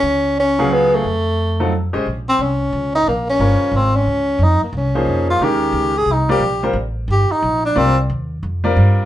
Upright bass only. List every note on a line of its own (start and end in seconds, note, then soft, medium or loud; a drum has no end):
0.03 1.00 C#2 medium
1.04 1.89 F2 medium
1.94 2.05 A1 medium
2.06 2.38 A#1 medium
2.39 2.71 C2 medium
2.73 3.05 C#2 medium
3.06 3.39 A#1 medium
3.39 3.59 G1 medium
3.60 muted upright bass stroke soft
3.72 4.05 G#1 medium
4.06 4.38 C#2 medium
4.39 4.59 F2 medium
4.62 muted upright bass stroke soft
4.73 5.06 C2 medium
5.06 5.39 F2 medium
5.39 5.72 D#2 medium
5.72 6.05 C#2 medium
6.06 6.39 C2 medium
6.40 6.73 A#1 medium
6.73 7.07 A1 medium
7.08 7.28 G1 medium
7.29 muted upright bass stroke soft
7.42 7.75 A#1 medium
7.76 8.08 C2 medium
8.10 8.42 D#2 medium
8.43 8.75 F2 medium
8.76 9.05 G2 medium